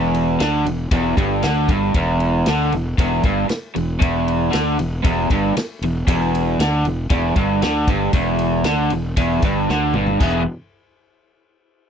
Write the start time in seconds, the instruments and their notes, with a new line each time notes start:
Already playing: fingered electric bass E1, overdriven electric guitar E2
0.14 ride
0.40 fingered electric bass D2, overdriven electric guitar D3, snare, ride
0.65 fingered electric bass E1, overdriven electric guitar E2, ride
0.91 fingered electric bass E1, overdriven electric guitar E2, kick, ride
1.17 fingered electric bass G1, overdriven electric guitar G2, kick, ride
1.43 fingered electric bass D2, overdriven electric guitar D3, snare, ride
1.69 fingered electric bass G1, overdriven electric guitar G2, kick, ride
1.94 fingered electric bass E1, overdriven electric guitar E2, kick, ride
2.20 ride
2.46 fingered electric bass D2, overdriven electric guitar D3, snare, ride
2.72 fingered electric bass E1, overdriven electric guitar E2, ride
2.98 fingered electric bass E1, overdriven electric guitar E2, kick, ride
3.23 fingered electric bass G1, overdriven electric guitar G2, kick, ride
3.49 muted overdriven electric guitar stroke, muted fingered electric bass stroke, snare, ride
3.75 fingered electric bass E1, overdriven electric guitar E2, ride
4.00 fingered electric bass E1, overdriven electric guitar E2, kick, ride
4.28 ride
4.51 fingered electric bass D2, overdriven electric guitar D3, snare, ride
4.79 fingered electric bass E1, overdriven electric guitar E2, ride
5.04 fingered electric bass E1, overdriven electric guitar E2, kick, ride
5.30 fingered electric bass G1, overdriven electric guitar G2, kick, ride
5.56 muted fingered electric bass stroke, muted overdriven electric guitar stroke, snare, ride
5.81 fingered electric bass E1, overdriven electric guitar E2, ride
6.07 fingered electric bass E1, overdriven electric guitar E2, kick, ride
6.35 ride
6.59 fingered electric bass D2, overdriven electric guitar D3, snare, ride
6.85 fingered electric bass E1, overdriven electric guitar E2, ride
7.10 fingered electric bass E1, overdriven electric guitar E2, kick, ride
7.36 fingered electric bass G1, overdriven electric guitar G2, kick, ride
7.62 fingered electric bass D2, overdriven electric guitar D3, snare, ride
7.88 fingered electric bass G1, overdriven electric guitar G2, kick, ride
8.13 fingered electric bass E1, overdriven electric guitar E2, kick, ride
8.39 ride
8.64 fingered electric bass D2, overdriven electric guitar D3, snare, ride
8.90 fingered electric bass E1, overdriven electric guitar E2, ride
9.17 fingered electric bass E1, overdriven electric guitar E2, kick, ride
9.42 fingered electric bass G1, overdriven electric guitar G2, kick, ride
9.69 fingered electric bass D2, overdriven electric guitar D3, snare
9.93 fingered electric bass G1, overdriven electric guitar G2, mid tom
10.06 floor tom
10.20 fingered electric bass E1, overdriven electric guitar E3 G#3 B3 E4, kick, crash